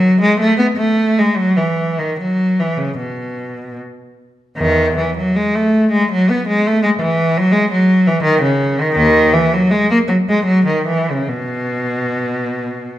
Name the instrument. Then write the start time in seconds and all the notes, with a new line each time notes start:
cello
Already playing: F#3
0.21 G#3
0.40 A3
0.58 B3
0.77 A3
1.19 G#3
1.37 F#3
1.57 E3
1.99 D#3
2.19 F#3
2.60 E3
2.77 C#3
2.98 B2
4.58 E2 D#3
4.98 E3
5.17 F#3
5.36 G#3
5.55 A3
5.92 G#3
6.12 F#3
6.30 B3
6.48 G#3
6.67 A3
6.83 G#3
7.00 E3
7.37 F#3
7.52 G#3
7.71 F#3
8.07 E3
8.23 D#3
8.42 C#3
8.80 D#3
8.96 D#2 D#3
9.33 E3
9.54 F#3
9.71 G#3
9.91 A#3
10.08 F#3
10.29 G#3
10.46 F#3
10.66 D#3
10.87 E3
11.10 C#3
11.29 B2